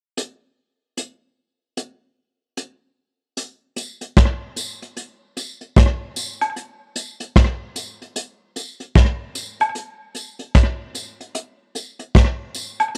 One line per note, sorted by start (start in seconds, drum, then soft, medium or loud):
0.17 closed hi-hat medium
0.97 closed hi-hat medium
1.77 closed hi-hat medium
2.57 closed hi-hat medium
3.37 closed hi-hat medium
3.76 closed hi-hat medium
3.76 tambourine soft
4.01 closed hi-hat medium
4.17 kick loud
4.17 cross-stick medium
4.17 closed hi-hat medium
4.56 closed hi-hat medium
4.56 tambourine medium
4.82 closed hi-hat soft
4.97 closed hi-hat medium
5.37 closed hi-hat medium
5.37 tambourine soft
5.61 closed hi-hat soft
5.76 kick loud
5.76 cross-stick loud
5.76 closed hi-hat medium
6.16 closed hi-hat medium
6.16 tambourine medium
6.41 closed hi-hat medium
6.41 high woodblock medium
6.56 closed hi-hat medium
6.96 closed hi-hat medium
6.96 tambourine soft
7.20 closed hi-hat medium
7.36 kick medium
7.36 cross-stick loud
7.36 closed hi-hat medium
7.76 closed hi-hat medium
7.76 tambourine medium
8.02 closed hi-hat soft
8.16 closed hi-hat loud
8.56 closed hi-hat medium
8.56 tambourine soft
8.80 closed hi-hat soft
8.95 kick loud
8.95 cross-stick medium
8.95 closed hi-hat medium
9.35 closed hi-hat medium
9.35 tambourine medium
9.60 closed hi-hat medium
9.60 high woodblock medium
9.75 closed hi-hat medium
10.15 closed hi-hat medium
10.15 tambourine soft
10.39 closed hi-hat medium
10.55 kick loud
10.55 cross-stick medium
10.55 closed hi-hat medium
10.95 closed hi-hat medium
10.95 tambourine medium
11.20 closed hi-hat soft
11.35 closed hi-hat loud
11.75 closed hi-hat medium
11.75 tambourine soft
11.99 closed hi-hat soft
12.15 kick loud
12.15 cross-stick medium
12.15 closed hi-hat medium
12.55 closed hi-hat medium
12.55 tambourine medium
12.80 closed hi-hat medium
12.80 high woodblock medium